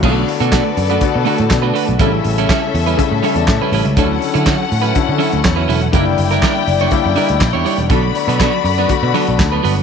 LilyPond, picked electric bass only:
\new Staff \with { instrumentName = "Picked electric bass" } { \clef bass \time 4/4 \key b \minor \tempo 4 = 122 b,,8 r16 b,8 r16 fis,8 r16 b,16 r16 a,16 b,8 r16 b,,16 | a,,8 a,,8 r8 e,8 r16 a,16 r16 e,16 a,16 r16 a,,16 cis,16 | d,8 r16 d8 r16 a,8 r16 d16 r16 d,16 e,8 e,,8 | fis,,8 fis,,8 r8 fis,,8 r16 fis,16 r16 d,16 ais,,16 e,16 r16 e,,16 |
b,,8 r16 b,8 r16 fis,8 r16 b,16 r16 b,,16 d,8 g,,8 | }